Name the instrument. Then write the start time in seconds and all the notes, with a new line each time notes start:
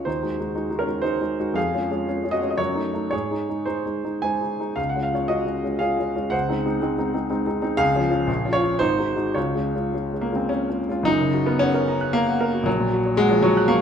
grand piano
0.05 D#2 D#4 C5
0.22 G#3 D#4 F#4
0.40 G#3 D#4 F#4
0.55 G#3 D#4 F#4
0.70 G#3 D#4 F#4
0.79 C#4 A#4
0.87 G#3 D#4 F#4
1.02 G#3 D#4 F#4 C5
1.20 G#3 D#4 F#4
1.39 G#3 D#4 F#4
1.54 F2 G#4 F5
1.74 G#3 C#4 F4
1.90 G#3 C#4 F4
2.08 G#3 C#4 F4
2.24 G#3 C#4 F4
2.31 F#4 D#5
2.41 G#3 C#4 F4
2.50 D#5
2.57 F#2 F#4 C#5
2.75 A3 D#4
2.94 A3 D#4
3.11 G#2 G#4 C#5
3.31 G#3 D#4
3.49 G#3 D#4
3.66 G#3 D#4 C5
3.86 G#3 D#4
4.04 G#3 D#4
4.22 G#3 D#4 C5 G#5
4.41 G#3 D#4
4.60 G#3 D#4
4.76 C#2 F5
4.89 F#5
4.96 G#3 C#4 F4
5.03 F5
5.13 G#3 C#4 F4 C#5
5.28 G#3 C#4 F4 F#4 D#5
5.46 G#3 C#4 F4
5.63 G#3 C#4 F4
5.79 G#3 C#4 F4 G#4 F5
5.99 G#3 C#4 F4
6.16 G#3 C#4 F4
6.30 C#2 C5 F#5
6.49 G#3 C4 D#4
6.65 G#3 C4 D#4
6.81 G#3 C4 D#4
6.98 G#3 C4 D#4
7.14 G#3 C4 D#4
7.30 G#3 C4 D#4
7.46 G#3 C4 D#4
7.62 G#3 C4 D#4
7.77 C#2 G#4 F5
7.95 F3 C#4 F4
8.10 F3 C#4 F4
8.27 A#1
8.45 F3 C#4 F4
8.53 F4 C#5
8.62 F3 C#4 F4
8.79 G#1 D#4 C5
8.98 G#3 D#4 F#4
9.16 G#3 D#4 F#4
9.34 C#2 F4 C#5
9.55 G#3 C#4 F4
9.75 G#3 C#4 F4
9.94 G#3 C#4 F4
10.13 G#3 C#4 F4
10.21 A#3
10.32 G#3 C4 C#4 F4
10.49 G#3 C#4 F4
10.69 G#3 C#4 F4
10.88 G#3 C#4 F4
11.03 F#1 F#2 D#4
11.20 C#3
11.33 F#4
11.46 B3 A#4
11.59 C#4 F#5
11.74 A#4
11.88 A#5
12.01 F#6
12.13 A#3 A#5
12.28 F#5
12.41 A#4
12.54 F#4
12.63 A#1 F#3
12.80 A#2
12.93 F#4
13.06 C#5
13.17 G#3 F#5
13.29 F3 C#5
13.43 F#3 C#6
13.57 F#6
13.68 A#3 C#6